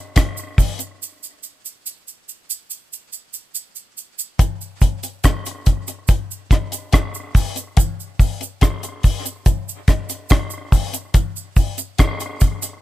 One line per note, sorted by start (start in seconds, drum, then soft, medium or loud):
0.16 kick loud
0.16 cross-stick loud
0.16 closed hi-hat medium
0.16 cabasa medium
0.37 cabasa medium
0.58 kick medium
0.58 open hi-hat medium
0.58 cabasa medium
0.79 closed hi-hat medium
0.79 cabasa medium
1.02 cabasa medium
1.23 cabasa soft
1.43 cabasa medium
1.65 cabasa medium
1.86 cabasa medium
2.08 cabasa medium
2.29 cabasa medium
2.50 cabasa medium
2.70 cabasa medium
2.93 cabasa medium
3.13 cabasa soft
3.33 cabasa medium
3.55 cabasa medium
3.75 cabasa medium
3.97 cabasa medium
4.19 cabasa medium
4.39 kick loud
4.39 closed hi-hat loud
4.39 cabasa medium
4.61 cabasa soft
4.81 kick medium
4.81 closed hi-hat medium
4.81 cabasa medium
5.03 closed hi-hat medium
5.03 cabasa medium
5.24 kick loud
5.24 cross-stick loud
5.24 closed hi-hat medium
5.24 cabasa medium
5.46 closed hi-hat medium
5.46 cabasa medium
5.66 kick medium
5.66 closed hi-hat medium
5.66 cabasa medium
5.88 closed hi-hat soft
5.88 cabasa medium
6.08 kick loud
6.08 closed hi-hat medium
6.08 cabasa medium
6.31 cabasa medium
6.51 kick loud
6.51 cross-stick medium
6.51 closed hi-hat medium
6.51 cabasa soft
6.72 closed hi-hat medium
6.72 cabasa medium
6.93 kick loud
6.93 cross-stick loud
6.93 closed hi-hat medium
6.93 cabasa medium
7.14 cabasa medium
7.35 kick medium
7.35 open hi-hat medium
7.35 cabasa medium
7.56 closed hi-hat medium
7.56 cabasa medium
7.77 kick loud
7.77 closed hi-hat loud
7.77 cabasa medium
8.00 cabasa soft
8.19 kick medium
8.19 open hi-hat medium
8.19 cabasa medium
8.41 closed hi-hat medium
8.41 cabasa medium
8.61 kick loud
8.61 cross-stick loud
8.61 closed hi-hat medium
8.61 cabasa medium
8.83 closed hi-hat medium
8.83 cabasa medium
9.03 kick medium
9.03 open hi-hat medium
9.03 cabasa medium
9.25 closed hi-hat soft
9.25 cabasa medium
9.46 kick loud
9.46 closed hi-hat medium
9.46 cabasa medium
9.69 cabasa medium
9.88 kick loud
9.88 cross-stick medium
9.88 closed hi-hat medium
9.88 cabasa soft
10.09 closed hi-hat soft
10.09 cabasa medium
10.29 kick loud
10.29 cross-stick loud
10.29 closed hi-hat medium
10.29 cabasa medium
10.50 cabasa medium
10.72 kick medium
10.72 open hi-hat medium
10.72 cabasa medium
10.93 closed hi-hat medium
10.93 cabasa medium
11.14 kick loud
11.14 closed hi-hat medium
11.14 cabasa medium
11.36 cabasa soft
11.56 kick medium
11.56 open hi-hat medium
11.56 cabasa medium
11.78 closed hi-hat medium
11.78 cabasa medium
11.98 kick loud
11.98 cross-stick loud
11.98 closed hi-hat medium
11.98 cabasa medium
12.20 closed hi-hat medium
12.20 cabasa soft
12.40 kick medium
12.40 closed hi-hat medium
12.40 cabasa medium
12.62 closed hi-hat soft
12.62 cabasa medium